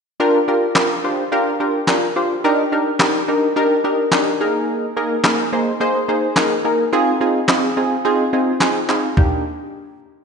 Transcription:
0.20 analog polysynth D4 F4 G4 A#4
0.48 analog polysynth D4 F4 G4 A#4
0.75 analog polysynth D4 F4 G4 A#4, snare, clap
1.04 analog polysynth D4 F4 G4 C5
1.32 analog polysynth D4 F4 G4 A#4
1.60 analog polysynth D4 F4 G4 A#4
1.87 analog polysynth D4 F4 G4 A#4, snare, clap
2.16 analog polysynth D4 F4 G4 C5
2.44 analog polysynth D4 D#4 G4 A#4
2.72 analog polysynth D4 D#4 G4 A#4
2.99 analog polysynth D4 D#4 G4 A#4, snare, clap
3.28 analog polysynth D4 D#4 G4 A#4
3.56 analog polysynth D4 D#4 G4 A#4
3.84 analog polysynth D4 D#4 G4 A#4
4.12 analog polysynth D4 D#4 G4 A#4, snare, clap
4.40 analog polysynth A#3 D#4 G#4 A#4
4.96 analog polysynth A#3 D#4 G#4 A#4
5.24 analog polysynth A#3 D#4 G#4 A#4, snare, clap
5.52 analog polysynth A#3 D#4 G#4 C5
5.80 analog polysynth A#3 D#4 G#4 C5
6.08 analog polysynth A#3 D#4 G#4 C5
6.36 analog polysynth A#3 D#4 G#4 A#4, snare, clap
6.65 analog polysynth A#3 D#4 G#4 A#4
6.92 analog polysynth C4 D#4 F4 G#4
7.21 analog polysynth C4 D#4 F4 G#4
7.48 analog polysynth C4 D#4 F4 G#4, snare, clap
7.77 analog polysynth C4 D#4 F4 G#4
8.05 analog polysynth C4 D#4 F4 G#4
8.33 analog polysynth C4 D#4 F4 G#4
8.60 analog polysynth C4 D#4 F4 G#4, snare, clap
8.89 analog polysynth C4 D#4 F4 G#4, clap
9.17 analog polysynth A#3 D4 D#4 G4, kick, floor tom

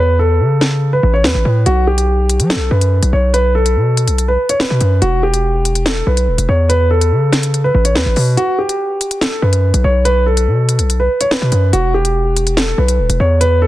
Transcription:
Already playing: 808-style bass E2
0.00 grand piano B4
0.19 grand piano A4
0.40 808-style bass C#3
0.61 snare
0.93 grand piano B4
1.03 808-style bass A1
1.14 grand piano C#5
1.24 808-style bass E2, grand piano B4, snare
1.35 808-style bass A1
1.45 808-style bass A2
1.66 808-style bass B1, grand piano F#4, closed hi-hat
1.87 grand piano G4
1.98 closed hi-hat
2.29 closed hi-hat
2.40 808-style bass F#3, closed hi-hat
2.50 grand piano A4, snare, closed hi-hat
2.55 808-style bass B1
2.71 808-style bass F#2, grand piano B4
2.81 closed hi-hat
3.03 808-style bass B1, closed hi-hat
3.13 808-style bass B1, grand piano C#5
3.34 grand piano B4, closed hi-hat
3.55 grand piano A4
3.66 closed hi-hat
3.76 808-style bass B2
3.97 closed hi-hat
4.07 808-style bass B1, closed hi-hat
4.18 closed hi-hat
4.28 grand piano B4
4.49 grand piano C#5, closed hi-hat
4.60 grand piano B4, snare
4.70 808-style bass B2
4.81 808-style bass F#2, closed hi-hat
5.02 808-style bass E1, grand piano F#4, closed hi-hat
5.23 grand piano G4
5.34 closed hi-hat
5.65 closed hi-hat
5.75 closed hi-hat
5.86 grand piano A4, snare, closed hi-hat
6.07 808-style bass B1, grand piano B4
6.17 closed hi-hat
6.28 808-style bass D1
6.38 808-style bass E1, closed hi-hat
6.49 808-style bass E2, grand piano C#5
6.69 grand piano B4, closed hi-hat
6.91 grand piano A4
7.01 closed hi-hat
7.12 808-style bass C#3
7.33 snare, closed hi-hat
7.43 closed hi-hat
7.54 closed hi-hat
7.64 grand piano B4
7.75 808-style bass A1
7.85 grand piano C#5, closed hi-hat
7.95 808-style bass E2, grand piano B4, snare
8.06 808-style bass A1
8.16 808-style bass B2, open hi-hat
8.37 grand piano F#4, closed hi-hat
8.59 grand piano G4
8.69 closed hi-hat
9.01 closed hi-hat
9.11 closed hi-hat
9.21 grand piano A4, snare, closed hi-hat
9.42 808-style bass F#2, grand piano B4
9.53 closed hi-hat
9.74 808-style bass B1, closed hi-hat
9.84 808-style bass B1, grand piano C#5
10.05 grand piano B4, closed hi-hat
10.26 grand piano A4
10.37 closed hi-hat
10.47 808-style bass B2
10.69 closed hi-hat
10.79 808-style bass B1, closed hi-hat
10.90 closed hi-hat
11.00 grand piano B4
11.21 grand piano C#5, closed hi-hat
11.31 grand piano B4, snare
11.42 808-style bass B2
11.52 808-style bass F#2, closed hi-hat
11.73 808-style bass E1, grand piano F#4, closed hi-hat
11.94 grand piano G4
12.05 closed hi-hat
12.37 closed hi-hat
12.47 closed hi-hat
12.57 grand piano A4, snare, closed hi-hat
12.78 808-style bass B1, grand piano B4
12.88 closed hi-hat
12.99 808-style bass D1
13.09 808-style bass E1, closed hi-hat
13.20 808-style bass E2, grand piano C#5
13.41 grand piano B4, closed hi-hat
13.62 grand piano A4

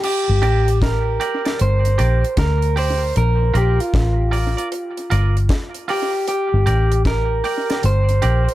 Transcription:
0.03 clean electric guitar G4, crash
0.29 fingered electric bass G1
0.42 fingered electric bass A1, clean electric guitar G4 A#4 D5, closed hi-hat
0.68 closed hi-hat
0.82 clean electric guitar A#4, kick, snare, closed hi-hat
1.20 clean electric guitar G4 A#4 D5, closed hi-hat
1.45 clean electric guitar G4 A#4 D5, snare, closed hi-hat
1.59 fingered electric bass G1, clean electric guitar C5, closed hi-hat
1.85 closed hi-hat
1.98 fingered electric bass A#1, clean electric guitar G4 A#4 D5, closed hi-hat
2.24 closed hi-hat
2.37 fingered electric bass D2, clean electric guitar A#4, kick, snare, closed hi-hat
2.62 closed hi-hat
2.76 clean electric guitar G4 A#4 C5 D5, open hi-hat
3.16 fingered electric bass A#1, clean electric guitar A#4, closed hi-hat
3.54 fingered electric bass A#1, clean electric guitar F4 G4 A#4 D5, closed hi-hat
3.80 clean electric guitar F4, closed hi-hat
3.94 fingered electric bass A1, kick, snare, closed hi-hat
4.31 clean electric guitar F4 A#4 D5, open hi-hat
4.57 clean electric guitar F4 A#4 D5, closed hi-hat
4.72 closed hi-hat
4.97 closed hi-hat
5.10 fingered electric bass G1, clean electric guitar F4 A#4 D5, closed hi-hat
5.37 closed hi-hat
5.49 kick, snare, closed hi-hat
5.74 closed hi-hat
5.88 clean electric guitar F4 G4 A#4 D5, open hi-hat
6.13 muted clean electric guitar stroke
6.28 clean electric guitar G4, closed hi-hat
6.54 fingered electric bass G1
6.66 fingered electric bass A1, clean electric guitar G4 A#4 D5, closed hi-hat
6.92 closed hi-hat
7.05 clean electric guitar A#4, kick, snare, closed hi-hat
7.44 clean electric guitar G4 A#4 D5, open hi-hat
7.69 clean electric guitar G4 A#4 D5, snare, closed hi-hat
7.83 fingered electric bass G1, clean electric guitar C5, closed hi-hat
8.09 closed hi-hat
8.22 fingered electric bass A#1, clean electric guitar G4 A#4 D5, closed hi-hat
8.49 closed hi-hat

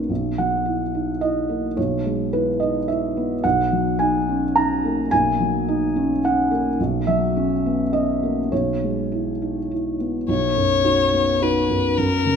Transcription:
Already playing: felt piano B1 F#3 A#3 C#4 D#4 B4 C#5
0.10 felt piano B1
0.38 felt piano F#3 F#5
0.66 felt piano E4
0.94 felt piano D#4
1.21 felt piano E4 D#5
1.49 felt piano A#3
1.77 felt piano B1 C#5
2.05 felt piano G#3
2.33 felt piano E4 B4
2.60 felt piano D#4 D#5
2.88 felt piano E4 E5
3.17 felt piano B3
3.44 felt piano B1 F#5
3.72 felt piano F#3
3.99 felt piano D#4 G#5
4.29 felt piano C#4
4.56 felt piano D#4 A#5
4.85 felt piano A#3
5.11 felt piano B1 G#5
5.40 felt piano F#3
5.68 felt piano D#4
5.96 felt piano C#4
6.24 felt piano D#4 F#5
6.51 felt piano A#3
6.80 felt piano B1
7.07 felt piano F#3 E5
7.37 felt piano C#4
7.66 felt piano B3
7.93 felt piano C#4 D#5
8.23 felt piano A#3
8.52 felt piano B1 C#5
8.83 felt piano G#3
9.12 felt piano E4
9.42 felt piano D#4
9.71 felt piano E4
10.00 felt piano B3
10.28 felt piano B1, violin C#5
10.56 felt piano F#2
10.84 felt piano D#4 F#4
11.13 felt piano B3
11.41 felt piano D#4 F#4, violin B4
11.69 felt piano F#2
11.97 felt piano F#2, violin A#4
12.25 felt piano C#3

